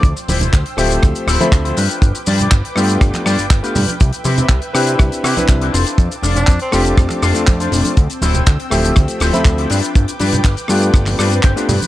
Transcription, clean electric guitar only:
\new Staff \with { instrumentName = "Clean electric guitar" } { \time 4/4 \key g \mixolydian \tempo 4 = 121 << { r1 | r1 | r1 | r1 |
r1 | r2 r8 d''8 g''4 | } \\ { r8 <e' f' g' c''>8 r8 <e' f' g' c''>8 r8 <e' f' g' c''>8 r16 <e' f' g' c''>16 <d' f' g' b'>8~ | <d' f' g' b'>16 r16 <d' f' g' d''>8 r8 <d' f' g' a'>8 r8 <d' f' g' d''>8 r16 <d' f' g' b'>8. | r8 <c' e' g' b'>8 r8 <c' e' g' b'>8 r8 <c' e' g' b'>8 r16 <c' e' g' b'>16 <d' f' a' c''>8~ | <d' f' a' c''>16 r16 <d' f' a' d''>8 r8 <d' f' a' b'>8 r8 <d' f' a' c''>8 r16 <d' f' a' c''>8. |
r8 <e' f' g' c''>8 r8 <e' f' g' c''>8 r8 <e' f' g' c''>8 r16 <e' f' g' c''>16 <d' f' g' b'>8~ | <d' f' g' b'>16 r16 <d' f' g' b'>8 r8 <d' f' g' b'>8 r8 <d' f' g' b'>8 r16 <d' f' g' b'>8. | } >> }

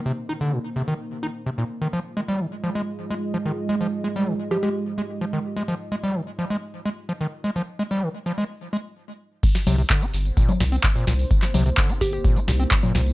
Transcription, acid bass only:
\new Staff \with { instrumentName = "Acid bass" } { \clef bass \time 4/4 \key c \minor \tempo 4 = 128 c16 r16 ees'16 d16 bes,16 r16 c16 ees16 r8 ees'16 r16 c16 bes,16 r16 ees16 | f16 r16 aes16 g16 ees16 r16 f16 aes16 r8 aes16 r16 f16 ees16 r16 aes16 | f16 r16 aes16 g16 ees16 r16 f16 aes16 r8 aes16 r16 f16 ees16 r16 aes16 | f16 r16 aes16 g16 ees16 r16 f16 aes16 r8 aes16 r16 f16 ees16 r16 aes16 |
f16 r16 aes16 g16 ees16 r16 f16 aes16 r8 aes16 r4 r16 | r8 c16 c16 d16 ees'16 r8 bes,16 c'16 bes,16 c'16 r16 bes,16 bes,16 r16 | r8 c16 c16 d16 ees'16 r8 bes,16 c'16 bes,16 c'16 r16 bes,16 bes,16 r16 | }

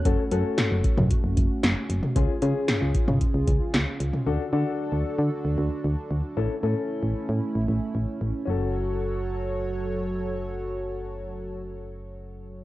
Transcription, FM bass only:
\new Staff \with { instrumentName = "FM bass" } { \clef bass \time 4/4 \key fis \minor \tempo 4 = 114 fis,,16 r16 fis,16 r8 fis,,16 r16 fis,16 r16 fis,,16 fis,,16 r16 fis,,16 r16 fis,,16 r16 | cis,16 r16 cis16 r8 cis,16 r16 cis16 r16 cis,16 cis,16 r16 cis,16 r16 cis,16 r16 | d,16 r16 d16 r8 d,16 r16 d16 r16 d,16 d,16 r16 d,16 r16 d,16 r16 | a,,16 r16 a,16 r8 a,,16 r16 a,16 r16 a,,16 a,,16 r16 a,,16 r16 a,,16 r16 |
fis,,1~ | fis,,1 | }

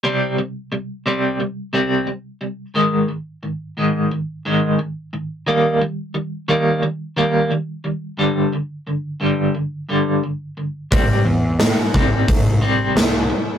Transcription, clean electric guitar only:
\new Staff \with { instrumentName = "Clean electric guitar" } { \clef bass \time 4/4 \key g \mixolydian \tempo 4 = 88 <c g c'>8 <c g>8 <c g>8 <c g c'>8 <c g>8 <c g c'>8 <c g>8 <c g>8 | <aes, ees aes>8 <aes, ees>8 <aes, ees>8 <aes, ees aes>8 r8 <aes, ees aes>8 <aes, ees>8 <aes, ees>8 | <ees g bes>8 <ees g>8 <ees g>8 <ees g bes>8 <ees g>8 <ees g bes>8 <ees g>8 <ees g>8 | <g, d g>8 <g, d>8 <g, d>8 <g, d g>8 d8 <g, d g>8 d8 <g, d>8 |
<c g c'>8 r8 <c g>8 <c g c'>8 g8 <c g c'>8 <c g>8 <c g>8 | }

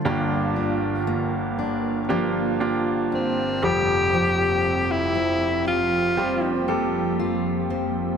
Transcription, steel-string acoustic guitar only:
\new Staff \with { instrumentName = "Steel-string acoustic guitar" } { \time 4/4 \key g \dorian \tempo 4 = 59 <g, g'>8 d'8 bes8 d'8 f8 g'8 d'8 f8 | <f g'>4 c'8 f'8 c'8 g'8 f'8 c'8 | }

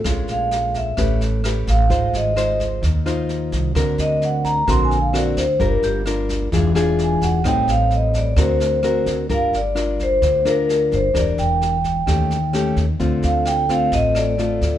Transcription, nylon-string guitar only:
\new Staff \with { instrumentName = "Nylon-string guitar" } { \time 4/4 \key g \minor \tempo 4 = 130 << { <aes des' f'>2 <cis' g' b'>4 <cis' g' b'>4 | <ees' f' c''>4 <ees' f' c''>4 r8 <ees' f' c''>4. | <c' fis' ais'>2 <c' fis' ais'>8 r8 <c' fis' ais'>8 r8 | <d' f' bes'>4 <d' f' bes'>4 <d' f' gis'>8 <d' f' gis'>4. |
<g c' ees'>2 <c' fis' ais'>4 <c' fis' ais'>4 | <d' f' bes'>8 r8 <d' f' bes'>4. <d' f' bes'>4. | <d' g' bes'>4. r8 <a des' g'>8 r8 <a des' g'>8 r8 | <a c' f'>4. <a c' f'>4. <a c' f'>4 | } \\ { bes,2 a2 | aes2 ees2 | d2 d2 | g2 e2 |
a,2 d2 | g2 d2 | e2 ees2 | d2 a,2 | } >> }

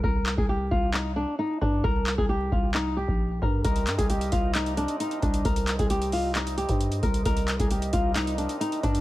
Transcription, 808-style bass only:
\new Staff \with { instrumentName = "808-style bass" } { \clef bass \time 4/4 \key c \minor \tempo 4 = 133 c,8. c,8. c,4~ c,16 r8. g,8 | c,8. c,8. c,4~ c,16 bes,,8. g,8 | c,8 g,16 c,8. c,4~ c,16 r8. c,8 | c,8. c,2 g,8. c,8 |
c,8. c,8. c,4~ c,16 r8. g,8 | }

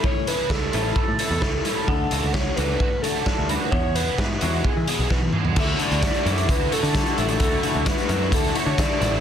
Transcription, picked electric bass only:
\new Staff \with { instrumentName = "Picked electric bass" } { \clef bass \time 4/4 \key d \lydian \tempo 4 = 130 r4 cis,8 a,,8 r16 a,16 r16 e,16 r4 | d,8 cis,16 cis,8. cis,8 r4 r16 d,8 r16 | e,4 gis,8 e,8 r16 e16 r16 b,,16 b,,8 r8 | d,8 r16 d,8 r16 fis,8 d,8 r16 d8 r16 a,,8 |
d,8 r16 d,8 r16 fis,8 d,8 r16 d8 r16 a,,8 | }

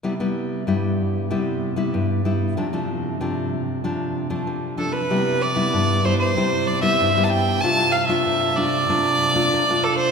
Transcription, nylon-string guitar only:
\new Staff \with { instrumentName = "Nylon-string guitar" } { \time 4/4 \key c \major \tempo 4 = 95 << { <g b e'>16 <g b e'>8. <g b e'>4 <g b e'>8. <g b e'>8. <g b e'>8 | <f a d'>16 <f a d'>8. <f a d'>8. r16 <f a d'>8. <f a d'>8. <f a d'>16 r16 | <g b e'>8 r16 <g b e'>8. <g b e'>8 <g e'>8. <g b e'>8 <g b e'>8. | <a d' f'>8 r16 <a d' f'>8. <a d' f'>16 r16 <a d' f'>8. <a d' f'>8 <a d' f'>8. | } \\ { c4 g,4 c4 g,4 | c4 c4 c4 c4 | c4 g,4 c4 g,4 | c4 c4 c4 c4 | } >> }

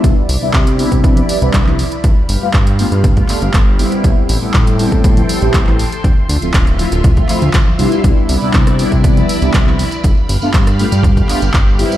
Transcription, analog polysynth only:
\new Staff \with { instrumentName = "Analog polysynth" } { \time 4/4 \key c \major \tempo 4 = 120 <g b d' e'>8 r16 <g b d' e'>8. <g b d' e'>4~ <g b d' e'>16 <g b d' e'>8 <g b d' e'>16 r8 | r8. <a b d' f'>16 r8 <a b d' f'>16 r8 <a b d' f'>16 <a b d' f'>16 r8. <g b c' e'>8~ | <g b c' e'>8. <g b c' e'>8. <g b c' e'>4~ <g b c' e'>16 <g b c' e'>8 <g b c' e'>16 r8 | r8. <f a c' e'>16 r8 <f a c' e'>16 r8 <f a c' e'>16 <f a c' e'>16 r8. <g b d' e'>8~ |
<g b d' e'>8. <g b d' e'>8. <g b d' e'>4~ <g b d' e'>16 <g b d' e'>8 <g b d' e'>16 r8 | r8. <a b d' f'>16 r8 <a b d' f'>16 r8 <a b d' f'>16 <a b d' f'>16 r8. <g b c' e'>8 | }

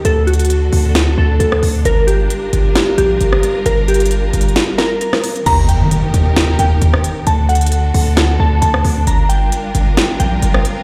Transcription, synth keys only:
\new Staff \with { instrumentName = "Synth keys" } { \time 4/4 \key g \minor \tempo 4 = 133 a'8 fis'2 a'8 a'4 | bes'8 g'2 g'4. | bes'8 g'2 bes'8 bes'4 | bes''8 g''2 g''4. |
a''8 fis''2 a''8 a''4 | bes''8 g''2 g''4. | }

